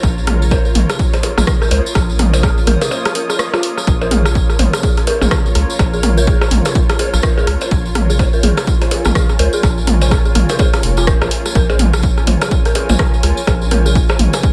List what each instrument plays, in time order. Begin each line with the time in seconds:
Already playing: ambient pad F4 A#4 C#5 A#5
0.03 analog synth bass A#1, kick, cross-stick, tambourine
0.18 tambourine
0.23 ambient pad D#6
0.27 synth bell G#4, cross-stick, mid tom, open hi-hat
0.42 tambourine
0.51 synth bell A#4, kick, cross-stick, tambourine, percussion blips
0.65 synth bell A#4, tambourine
0.75 analog synth bass A#1, mid tom, open hi-hat
0.89 cross-stick, open hi-hat, tambourine, percussion blips
0.99 kick, tambourine
1.13 cross-stick, open hi-hat, tambourine, percussion blips
1.23 open hi-hat, percussion blips
1.38 analog synth bass A#1, synth bell G#4, cross-stick, mid tom, tambourine
1.47 kick, cross-stick, tambourine
1.62 synth bell A#4, cross-stick, tambourine
1.71 analog synth bass C#2, synth bell A#4, open hi-hat, percussion blips
1.86 tambourine
1.95 analog synth bass A#1, kick, cross-stick, tambourine
2.10 tambourine
2.19 cross-stick, mid tom, open hi-hat
2.33 tambourine, percussion blips
2.43 synth bell G#4, kick, cross-stick, tambourine
2.58 tambourine
2.67 analog synth bass A#1, synth bell A#4, cross-stick, mid tom, open hi-hat
2.81 synth bell A#4, open hi-hat, tambourine, percussion blips
2.91 tambourine, percussion blips
3.05 cross-stick, open hi-hat, tambourine, percussion blips
3.15 synth bell A#4, open hi-hat
3.30 synth bell G#4, cross-stick, tambourine
3.39 cross-stick, tambourine
3.54 synth bell F4, cross-stick, tambourine, percussion blips
3.63 open hi-hat
3.78 cross-stick, tambourine
3.87 analog synth bass A#1, kick, cross-stick, tambourine
4.01 synth bell A#4, tambourine, percussion blips
4.07 ambient pad A#5
4.11 synth bell G#4, mid tom, open hi-hat
4.25 cross-stick, tambourine
4.35 kick, tambourine
4.50 cross-stick, tambourine
4.59 analog synth bass A#1, mid tom, open hi-hat, percussion blips
4.73 cross-stick, open hi-hat, tambourine, percussion blips
4.83 synth bell G#4, kick, tambourine
4.97 cross-stick, open hi-hat, tambourine
5.07 synth bell A#4, open hi-hat, percussion blips
5.21 analog synth bass A#1, synth bell G#4, mid tom, tambourine, percussion blips
5.31 kick, cross-stick, tambourine
5.46 tambourine
5.55 analog synth bass C#2, cross-stick, open hi-hat
5.70 tambourine
5.79 analog synth bass A#1, kick, cross-stick, tambourine, percussion blips
5.93 synth bell G#4, tambourine
6.03 cross-stick, mid tom, open hi-hat
6.17 synth bell A#4, tambourine
6.27 synth bell G#4, kick, tambourine
6.41 cross-stick, tambourine, percussion blips
6.51 analog synth bass A#1, ambient pad G#5, mid tom, open hi-hat
6.65 cross-stick, open hi-hat, tambourine, percussion blips
6.75 kick, tambourine
6.89 cross-stick, open hi-hat, tambourine, percussion blips
6.99 synth bell G#4, open hi-hat, percussion blips
7.13 analog synth bass A#1, cross-stick, tambourine
7.22 synth bell A#4, kick, cross-stick, tambourine
7.38 synth bell G#4, tambourine, percussion blips
7.47 analog synth bass C#2, cross-stick, open hi-hat
7.61 tambourine, percussion blips
7.71 analog synth bass A#1, kick, cross-stick, tambourine
7.85 tambourine
7.95 cross-stick, mid tom, open hi-hat
8.10 synth bell G#4, tambourine
8.19 kick, cross-stick, tambourine, percussion blips
8.33 synth bell A#4, tambourine
8.43 analog synth bass A#1, synth bell G#4, mid tom, open hi-hat
8.57 cross-stick, open hi-hat, tambourine, percussion blips
8.67 kick, tambourine
8.81 cross-stick, open hi-hat, tambourine, percussion blips
8.91 open hi-hat, percussion blips
9.05 analog synth bass A#1, cross-stick, mid tom, tambourine
9.15 synth bell G#4, kick, cross-stick, tambourine
9.29 cross-stick, tambourine
9.39 analog synth bass C#2, synth bell A#4, open hi-hat, percussion blips
9.53 synth bell G#4, tambourine
9.63 analog synth bass A#1, kick, cross-stick, tambourine
9.78 tambourine
9.87 cross-stick, mid tom, open hi-hat
10.01 tambourine, percussion blips
10.11 kick, cross-stick, tambourine
10.25 synth bell G#4, tambourine
10.35 analog synth bass A#1, cross-stick, mid tom, open hi-hat
10.49 synth bell A#4, open hi-hat, tambourine, percussion blips
10.59 synth bell G#4, kick, tambourine, percussion blips
10.73 cross-stick, open hi-hat, tambourine, percussion blips
10.83 analog synth bass F1, open hi-hat
10.97 synth bell F4, cross-stick, tambourine
11.07 synth bell A#4, kick, cross-stick, tambourine
11.21 analog synth bass A#1, synth bell A#4, cross-stick, tambourine, percussion blips
11.31 open hi-hat
11.46 cross-stick, tambourine
11.55 analog synth bass A#1, synth bell A#4, kick, cross-stick, tambourine
11.70 synth bell G#4, tambourine, percussion blips
11.79 mid tom, open hi-hat
11.93 cross-stick, tambourine
12.02 kick, tambourine
12.18 cross-stick, tambourine
12.27 analog synth bass A#1, mid tom, open hi-hat, percussion blips
12.41 synth bell G#4, cross-stick, open hi-hat, tambourine, percussion blips
12.51 kick, tambourine
12.65 synth bell A#4, cross-stick, open hi-hat, tambourine
12.75 synth bell G#4, open hi-hat, percussion blips
12.89 analog synth bass A#1, mid tom, tambourine, percussion blips
12.99 kick, cross-stick, tambourine
13.14 tambourine
13.23 analog synth bass C#2, cross-stick, open hi-hat
13.37 tambourine
13.47 analog synth bass A#1, synth bell G#4, kick, cross-stick, tambourine, percussion blips
13.61 tambourine
13.71 synth bell A#4, cross-stick, mid tom, open hi-hat
13.86 synth bell G#4, tambourine
13.95 kick, tambourine
14.09 cross-stick, tambourine, percussion blips
14.19 analog synth bass A#1, mid tom, open hi-hat
14.33 cross-stick, open hi-hat, tambourine, percussion blips
14.43 kick, tambourine